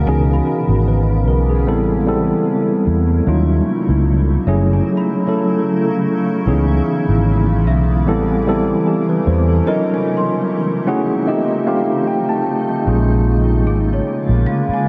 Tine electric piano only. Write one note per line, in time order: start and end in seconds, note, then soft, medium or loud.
0.07 1.13 E3 medium
0.07 1.13 B3 medium
0.07 1.13 C#4 medium
0.07 1.14 D#4 medium
0.07 0.88 G#4 loud
0.88 1.25 B4 medium
1.28 1.48 A#4 medium
1.50 1.87 G#4 medium
1.67 1.99 G3 medium
1.67 2.00 B3 medium
1.67 2.00 C4 medium
1.67 2.00 E4 medium
1.67 2.00 A4 loud
2.06 2.85 G3 medium
2.06 2.86 B3 medium
2.06 2.86 C4 medium
2.06 2.86 E4 medium
2.06 2.86 A4 loud
3.27 4.33 F#3 medium
3.27 4.33 A#3 medium
3.27 4.33 C#4 medium
3.27 4.33 D#4 medium
3.27 4.34 F4 loud
4.47 5.12 F#3 loud
4.47 5.12 A3 medium
4.47 5.13 C#4 medium
4.47 5.13 E4 medium
4.47 5.13 G#4 loud
5.27 6.06 F#3 medium
5.27 6.06 A3 medium
5.27 6.06 C#4 medium
5.27 6.06 E4 medium
5.27 6.06 A4 loud
6.47 7.53 E3 medium
6.47 7.53 B3 medium
6.47 7.53 C#4 medium
6.47 7.53 D#4 medium
6.47 7.54 G#4 loud
8.07 8.39 G3 medium
8.07 8.40 B3 medium
8.07 8.40 C4 medium
8.07 8.40 E4 medium
8.07 8.40 A4 loud
8.47 9.25 G3 medium
8.47 9.26 B3 medium
8.47 9.26 C4 medium
8.47 9.26 E4 medium
8.47 8.88 A4 loud
8.88 9.08 G4 medium
9.09 9.26 B4 medium
9.27 9.48 C5 medium
9.49 9.87 A4 medium
9.66 10.73 F#3 medium
9.66 10.73 C#4 medium
9.66 10.73 D#4 medium
9.66 10.73 F4 medium
9.66 10.73 A#4 loud
10.87 11.19 A3 loud
10.87 11.20 C#4 medium
10.87 11.20 E4 medium
10.87 11.20 F#4 medium
10.87 11.20 G#4 loud
10.87 11.25 F#5 medium
11.27 11.59 A3 medium
11.27 11.60 C4 medium
11.27 11.60 D#4 medium
11.27 11.60 F4 medium
11.27 11.60 G4 loud
11.27 11.64 D#5 medium
11.67 12.45 A3 loud
11.67 12.45 C4 medium
11.67 12.46 D#4 medium
11.67 12.46 F4 medium
11.67 12.46 G4 loud
11.67 12.04 F5 medium
12.07 12.27 G5 medium
12.29 12.83 A5 medium
12.87 13.93 G#3 medium
12.87 13.93 A#3 medium
12.87 13.93 C#4 medium
12.87 13.93 F4 medium
12.87 13.94 G#4 loud